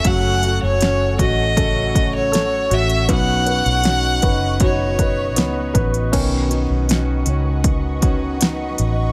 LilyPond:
<<
  \new Staff \with { instrumentName = "Ambient pad" } { \time 4/4 \key b \mixolydian \tempo 4 = 79 << { <fis'' cis'''>1~ | <fis'' cis'''>1 | <fis'' cis'''>1 | } \\ { <a' cis''>1 | <b' dis''>1 | <b' dis''>1 | } >> }
  \new Staff \with { instrumentName = "Violin" } { \time 4/4 \key b \mixolydian fis''8. cis''8. dis''4~ dis''16 cis''8. e''8 | fis''2 cis''4. r8 | r1 | }
  \new Staff \with { instrumentName = "Grand piano" } { \time 4/4 \key b \mixolydian fis8 fis'8 cis'8 fis'8 a'8 fis'8 a'8 fis'8 | b8 b'8 fis'8 b'8 fis'8 b'8 b8 b'8 | <dis b cis'>8 r2. r8 | }
  \new Staff \with { instrumentName = "Steel-string acoustic guitar" } { \time 4/4 \key b \mixolydian <fis, cis fis a cis' fis'>4 <fis a cis' fis'>8 <fis a cis' fis'>8 <fis, cis fis a cis' fis'>4 <fis a cis' fis'>4 | <b, fis cis' dis' fis'>4 <fis cis' dis' fis'>8 <cis' dis' fis'>8 <b, fis cis' dis' fis'>4 <fis cis' dis' fis'>4 | <b, fis cis' dis' fis'>8 <cis' dis' fis'>8 <fis cis' dis' fis'>8 <cis' dis' fis'>4 <cis' dis' fis'>8 <fis cis' dis' fis'>4 | }
  \new Staff \with { instrumentName = "Fingered electric bass" } { \clef bass \time 4/4 \key b \mixolydian fis,,8. fis,,8. a,,2 a,,8 | b,,8. b,,8. fis,,4. cis,8 a,,8 | b,,8. b,,8. cis,2 a,,8 | }
  \new DrumStaff \with { instrumentName = "Drums" } \drummode { \time 4/4 <hh bd>8 hh8 <hh sn>8 <hh bd>8 <hh bd>8 <hh bd>8 <hh sn>8 hh16 hh16 | <hh bd>8 hh16 hh16 <hh sn>8 <hh bd>8 <hh bd>8 <hh bd>8 <hh sn>8 <hh bd>16 hh16 | <cymc hh bd>8 hh8 <hh sn>8 hh8 <hh bd>8 <hh bd>8 <hh sn>8 hh8 | }
>>